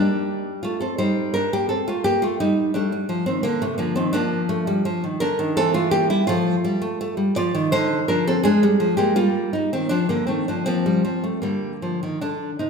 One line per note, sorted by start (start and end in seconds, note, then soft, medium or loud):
0.00 0.61 G3 medium
0.00 0.45 A#3 loud
0.00 0.61 D4 loud
0.63 0.81 A3 medium
0.63 0.82 F4 loud
0.80 0.99 C4 medium
0.80 0.98 A4 medium
0.98 1.75 G3 medium
0.98 1.33 D#4 medium
0.98 1.33 C5 loud
1.34 1.52 D4 medium
1.34 1.52 A#4 loud
1.53 1.70 A#3 medium
1.53 1.68 G4 loud
1.69 1.87 C4 medium
1.69 1.88 A4 medium
1.88 2.05 A3 medium
1.88 2.06 F4 loud
2.04 2.22 A#3 loud
2.04 2.23 G4 loud
2.22 2.40 A3 medium
2.22 2.40 F4 loud
2.40 2.73 G3 medium
2.40 2.74 D#4 loud
2.74 2.91 G3 medium
2.74 2.92 A3 medium
2.74 3.25 D4 loud
2.92 3.10 G3 medium
3.09 3.27 F3 medium
3.26 3.44 D#3 medium
3.26 3.43 C4 loud
3.43 3.61 D3 medium
3.43 3.61 A#3 loud
3.62 3.78 C3 medium
3.62 3.77 A3 loud
3.78 3.96 D3 medium
3.78 4.05 F3 medium
3.78 3.95 A#3 medium
3.96 4.14 D#3 medium
3.96 4.14 C4 loud
4.13 4.84 F3 loud
4.13 4.40 A#3 loud
4.13 5.17 D4 loud
4.49 4.67 A3 loud
4.67 4.85 G3 medium
4.85 5.03 F3 loud
5.04 5.21 D#3 medium
5.20 5.39 D3 medium
5.20 5.55 D4 medium
5.20 5.55 A#4 loud
5.39 5.56 D#3 medium
5.57 6.08 E3 loud
5.57 5.74 C4 loud
5.57 5.74 A4 loud
5.74 5.92 A3 medium
5.74 5.91 F4 loud
5.91 6.09 A#3 loud
5.91 6.10 G4 loud
6.10 6.27 G3 medium
6.10 6.27 E4 loud
6.27 6.55 F3 loud
6.27 6.80 A3 loud
6.27 7.31 F4 loud
6.64 6.82 G3 loud
6.82 6.99 A3 loud
7.01 7.17 A3 loud
7.17 7.35 G3 medium
7.36 7.54 F3 medium
7.36 7.70 F4 loud
7.36 7.71 D5 loud
7.55 7.72 D#3 loud
7.72 7.99 D3 loud
7.72 8.07 D#4 medium
7.72 8.07 C5 loud
8.08 8.35 F3 medium
8.08 8.26 D4 medium
8.08 8.27 A#4 loud
8.27 8.45 C4 loud
8.27 8.43 A4 loud
8.43 8.63 G#3 loud
8.43 8.96 D4 loud
8.43 8.96 G#4 loud
8.63 8.81 G3 loud
8.80 8.98 F3 loud
8.97 9.16 G#3 loud
8.97 9.15 A#3 medium
8.97 9.17 G4 loud
9.16 9.54 G3 medium
9.16 9.52 A#3 loud
9.16 9.53 F4 loud
9.53 9.73 G3 medium
9.53 9.72 D#4 medium
9.73 9.90 D#3 medium
9.73 9.89 C4 loud
9.89 10.09 F3 loud
9.89 10.10 D4 loud
10.09 10.27 D3 medium
10.09 10.28 A#3 loud
10.27 10.47 D#3 medium
10.27 10.56 A3 medium
10.27 10.48 C4 loud
10.48 10.66 F3 medium
10.48 10.65 D4 loud
10.66 11.03 F3 medium
10.66 10.85 A#3 medium
10.66 11.41 C4 loud
10.86 11.05 G3 medium
11.05 11.24 F3 medium
11.24 11.41 A3 medium
11.42 12.17 D3 medium
11.42 11.71 G3 medium
11.42 12.17 A#3 medium
11.82 12.01 F3 medium
12.03 12.21 D#3 medium
12.21 12.50 D3 medium
12.21 12.59 D4 medium
12.59 12.70 C3 medium
12.59 12.70 D#4 medium